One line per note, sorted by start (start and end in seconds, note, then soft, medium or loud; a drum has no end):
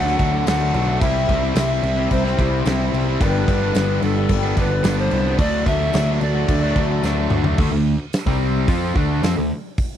0.00 0.15 D2 loud
0.00 0.18 D3 medium
0.00 0.20 D3 medium
0.00 0.20 F#3 medium
0.00 0.20 A3 medium
0.00 0.19 D4 medium
0.00 0.18 F#4 loud
0.00 0.47 F#5 loud
0.05 0.19 F#3 medium
0.05 0.20 A3 medium
0.05 0.21 D4 medium
0.05 snare soft
0.19 0.43 D2 medium
0.19 0.45 D3 medium
0.19 0.46 F#3 loud
0.19 0.47 A3 medium
0.19 0.47 D4 medium
0.19 0.48 D4 medium
0.19 0.47 F#4 medium
0.19 kick medium
0.19 crash medium
0.34 muted distorted electric guitar stroke soft
0.46 0.70 D2 medium
0.46 0.88 D3 medium
0.46 0.74 F#3 medium
0.46 0.62 F#3 medium
0.46 0.75 A3 medium
0.46 0.61 A3 loud
0.46 0.74 D4 medium
0.46 0.59 D4 loud
0.46 0.72 F#4 medium
0.46 1.03 F#5 loud
0.46 snare loud
0.46 tambourine loud
0.46 crash medium
0.60 0.89 F#3 medium
0.60 0.88 A3 medium
0.60 0.86 D4 medium
0.74 0.97 B1 loud
0.74 1.00 D3 medium
0.74 1.00 F#3 medium
0.74 1.01 A3 medium
0.74 1.02 A3 soft
0.74 1.02 D4 medium
0.74 1.01 D4 medium
0.74 1.01 F#4 medium
0.74 crash medium
0.87 1.01 F#3 medium
0.87 1.01 A3 medium
0.87 1.00 D4 medium
1.00 1.25 C2 loud
1.00 1.27 C3 loud
1.00 1.29 C3 medium
1.00 1.29 E3 medium
1.00 1.29 G3 loud
1.00 1.29 C4 medium
1.00 1.29 E4 medium
1.00 1.29 E4 loud
1.00 1.28 G4 medium
1.00 1.56 E5 loud
1.00 kick loud
1.00 crash medium
1.28 1.52 C2 loud
1.28 1.54 C3 medium
1.28 1.45 G3 medium
1.28 1.42 C4 medium
1.28 1.57 C4 soft
1.28 1.57 E4 soft
1.28 1.41 E4 medium
1.28 1.56 G4 medium
1.28 kick medium
1.28 crash medium
1.42 1.56 G3 medium
1.42 1.56 C4 medium
1.42 1.57 E4 medium
1.55 1.79 C2 loud
1.55 1.82 C3 medium
1.55 1.84 E3 medium
1.55 1.71 G3 medium
1.55 1.69 C4 loud
1.55 1.84 C4 medium
1.55 1.68 E4 loud
1.55 1.85 E4 medium
1.55 2.13 E5 medium
1.55 snare loud
1.55 tambourine loud
1.55 crash medium
1.59 1.83 G4 medium
1.69 1.83 G3 medium
1.69 1.82 C4 medium
1.69 1.82 E4 medium
1.83 2.06 C2 medium
1.83 2.24 C3 medium
1.83 1.96 G3 medium
1.83 1.96 C4 medium
1.83 2.12 C4 soft
1.83 1.95 E4 medium
1.83 2.12 E4 soft
1.83 2.11 G4 soft
1.83 muted overdriven electric guitar stroke soft
1.83 crash medium
1.97 2.26 G3 medium
1.97 2.24 C4 medium
1.97 2.23 E4 medium
1.97 muted distorted electric guitar stroke medium
2.11 2.34 C2 loud
2.11 2.39 C3 medium
2.11 2.39 E3 medium
2.11 2.39 C4 medium
2.11 2.40 E4 medium
2.11 2.39 G4 medium
2.11 2.93 C5 medium
2.11 kick medium
2.11 crash medium
2.24 2.37 G3 medium
2.24 2.38 C4 medium
2.24 2.39 E4 medium
2.24 snare soft
2.37 2.62 C2 medium
2.37 2.64 C3 medium
2.37 2.65 G3 medium
2.37 2.66 C4 medium
2.37 2.67 E4 loud
2.37 2.67 E4 medium
2.37 2.66 G4 medium
2.37 kick medium
2.37 crash medium
2.42 2.66 C4 soft
2.51 muted distorted electric guitar stroke soft
2.65 2.89 C2 medium
2.65 3.06 C3 medium
2.65 2.93 E3 medium
2.65 2.81 G3 loud
2.65 2.79 C4 medium
2.65 2.94 C4 medium
2.65 2.77 E4 loud
2.65 2.94 E4 medium
2.65 2.93 G4 medium
2.65 snare loud
2.65 tambourine loud
2.65 crash medium
2.79 3.07 G3 medium
2.79 3.06 C4 medium
2.79 3.04 E4 medium
2.92 3.16 C2 medium
2.92 3.18 C3 medium
2.92 3.19 G3 medium
2.92 3.19 C4 medium
2.92 3.19 E4 medium
2.92 3.22 E4 medium
2.92 3.21 G4 medium
2.92 crash medium
2.97 3.21 C4 soft
3.06 3.19 G3 medium
3.06 3.19 C4 medium
3.06 3.18 E4 medium
3.19 3.44 G1 loud
3.19 3.72 G2 loud
3.19 3.48 G2 medium
3.19 3.45 D3 loud
3.19 3.48 D3 medium
3.19 3.46 G3 loud
3.19 3.48 G3 loud
3.19 3.47 B3 loud
3.19 3.48 B3 medium
3.19 3.49 D4 loud
3.19 3.48 D4 medium
3.19 3.47 G4 medium
3.19 4.06 B4 loud
3.19 kick loud
3.19 crash medium
3.46 3.71 G1 loud
3.46 3.74 D3 medium
3.46 3.62 G3 medium
3.46 3.61 B3 medium
3.46 3.75 B3 soft
3.46 3.76 D4 medium
3.46 3.60 D4 medium
3.46 3.75 G4 medium
3.46 kick medium
3.46 crash medium
3.51 3.74 G3 soft
3.60 3.74 G3 medium
3.60 3.75 B3 medium
3.60 3.76 D4 medium
3.74 3.98 G1 loud
3.74 4.15 G2 loud
3.74 4.01 D3 loud
3.74 3.89 G3 medium
3.74 4.02 G3 medium
3.74 3.88 B3 medium
3.74 4.03 B3 medium
3.74 3.87 D4 loud
3.74 4.03 D4 medium
3.74 4.02 G4 medium
3.74 snare loud
3.74 tambourine loud
3.74 crash medium
3.88 4.01 G3 medium
3.88 4.01 B3 medium
3.88 4.02 D4 medium
4.02 4.26 G1 medium
4.02 4.16 D3 medium
4.02 4.16 G3 medium
4.02 4.31 G3 soft
4.02 4.16 B3 medium
4.02 4.31 B3 soft
4.02 4.31 D4 medium
4.02 4.16 D4 medium
4.02 4.30 G4 medium
4.02 4.60 A4 medium
4.02 muted overdriven electric guitar stroke medium
4.02 crash medium
4.15 4.44 G3 medium
4.15 4.43 B3 medium
4.15 4.42 D4 medium
4.15 muted distorted electric guitar stroke medium
4.29 4.53 G1 medium
4.29 4.58 G2 medium
4.29 4.58 D3 medium
4.29 4.58 G3 medium
4.29 4.57 B3 medium
4.29 4.57 D4 medium
4.29 kick medium
4.29 crash medium
4.33 4.56 G4 medium
4.42 4.56 G3 medium
4.42 4.57 B3 medium
4.42 4.58 D4 medium
4.56 4.80 G1 loud
4.56 4.82 D3 medium
4.56 4.83 G3 medium
4.56 4.83 G3 soft
4.56 4.83 B3 medium
4.56 4.84 B3 medium
4.56 4.85 D4 medium
4.56 4.84 G4 medium
4.56 5.00 B4 loud
4.56 kick medium
4.56 crash medium
4.71 muted distorted electric guitar stroke medium
4.83 5.07 G1 loud
4.83 5.25 G2 loud
4.83 5.25 D3 loud
4.83 4.98 G3 loud
4.83 5.12 G3 medium
4.83 4.97 B3 loud
4.83 5.12 B3 medium
4.83 4.96 D4 loud
4.83 5.12 D4 medium
4.83 snare loud
4.83 tambourine loud
4.83 crash medium
4.87 5.10 G4 medium
4.97 5.26 G3 medium
4.97 5.25 B3 medium
4.97 5.24 D4 medium
4.97 5.39 C5 loud
5.11 5.35 C2 medium
5.11 5.37 D3 medium
5.11 5.38 G3 medium
5.11 5.39 G3 soft
5.11 5.38 B3 medium
5.11 5.40 B3 soft
5.11 5.39 D4 medium
5.11 5.40 D4 medium
5.11 5.39 G4 medium
5.11 crash medium
5.24 5.39 G3 medium
5.24 5.38 B3 medium
5.24 5.40 D4 medium
5.38 5.62 D2 loud
5.38 5.65 D3 medium
5.38 5.66 D3 medium
5.38 5.66 F#3 medium
5.38 5.67 F#3 medium
5.38 5.67 A3 loud
5.38 5.67 A3 medium
5.38 5.67 D4 medium
5.38 5.68 D4 medium
5.38 5.65 F#4 medium
5.38 5.69 D5 loud
5.38 kick loud
5.38 crash medium
5.66 5.89 D2 loud
5.66 5.93 D3 medium
5.66 5.81 F#3 medium
5.66 5.80 A3 medium
5.66 5.93 A3 medium
5.66 5.78 D4 medium
5.66 5.94 F#4 medium
5.66 6.23 E5 loud
5.66 kick medium
5.66 crash medium
5.79 5.94 F#3 medium
5.79 5.94 A3 medium
5.79 5.95 D4 medium
5.93 6.17 D2 loud
5.93 6.20 D3 loud
5.93 6.21 F#3 medium
5.93 6.09 F#3 loud
5.93 6.22 A3 medium
5.93 6.08 A3 loud
5.93 6.21 D4 medium
5.93 6.06 D4 loud
5.93 6.20 F#4 medium
5.93 snare loud
5.93 tambourine loud
5.93 crash medium
6.07 6.21 F#3 medium
6.07 6.21 A3 medium
6.07 6.21 D4 medium
6.21 6.45 D2 medium
6.21 6.62 D3 medium
6.21 6.34 F#3 medium
6.21 6.34 A3 medium
6.21 6.48 A3 soft
6.21 6.49 D4 medium
6.21 6.33 D4 medium
6.21 6.49 F#4 medium
6.21 7.31 D5 medium
6.21 muted overdriven electric guitar stroke soft
6.21 crash medium
6.34 6.64 F#3 medium
6.34 6.62 A3 medium
6.34 6.61 D4 medium
6.34 muted distorted electric guitar stroke medium
6.48 6.72 D2 medium
6.48 6.76 D3 medium
6.48 6.76 F#3 medium
6.48 6.76 A3 medium
6.48 6.75 D4 medium
6.48 6.74 F#4 medium
6.48 kick loud
6.48 crash medium
6.62 6.76 F#3 medium
6.62 6.77 A3 medium
6.62 6.78 D4 medium
6.75 6.99 D2 medium
6.75 7.02 D3 medium
6.75 7.03 F#3 medium
6.75 7.02 A3 soft
6.75 7.04 A3 medium
6.75 7.03 D4 medium
6.75 7.05 D4 medium
6.75 7.03 F#4 medium
6.75 kick medium
6.75 crash medium
6.91 muted distorted electric guitar stroke medium
7.03 7.27 D2 medium
7.03 7.45 D3 medium
7.03 7.31 F#3 medium
7.03 7.19 F#3 loud
7.03 7.31 A3 medium
7.03 7.18 A3 loud
7.03 7.30 D4 medium
7.03 7.16 D4 loud
7.03 7.28 F#4 medium
7.03 snare medium
7.03 tambourine loud
7.17 7.47 F#3 medium
7.17 7.45 A3 medium
7.17 7.44 D4 medium
7.29 7.54 D2 medium
7.29 7.57 D3 medium
7.29 7.57 F#3 medium
7.29 7.59 A3 soft
7.29 7.58 A3 medium
7.29 7.59 D4 medium
7.29 7.58 D4 medium
7.29 7.58 F#4 medium
7.29 mid tom loud
7.44 7.58 F#3 medium
7.44 7.58 A3 medium
7.44 7.57 D4 medium
7.44 floor tom medium
7.58 7.71 D2 loud
7.58 7.71 D3 medium
7.58 7.71 A3 loud
7.58 kick loud
7.58 crash loud
7.71 7.97 D2 medium
7.71 7.94 D3 medium
7.71 7.95 A3 medium
8.13 snare loud
8.13 open hi-hat medium
8.13 tambourine loud
8.26 8.65 C2 medium
8.26 8.67 C3 medium
8.26 8.68 G3 loud
8.26 8.68 C4 loud
8.26 kick medium
8.68 8.94 F2 loud
8.68 8.95 F3 medium
8.68 8.95 C4 loud
8.68 8.95 F4 medium
8.68 kick loud
8.68 open hi-hat medium
8.95 9.21 D2 loud
8.95 9.23 D3 medium
8.95 9.23 A3 loud
8.95 9.23 D4 loud
8.95 kick loud
9.23 9.36 F2 medium
9.23 9.36 F3 medium
9.23 9.37 C4 loud
9.23 snare loud
9.23 open hi-hat medium
9.23 tambourine medium
9.36 9.50 D2 loud
9.36 9.51 D3 medium
9.36 9.51 A3 medium
9.78 kick loud
9.78 open hi-hat medium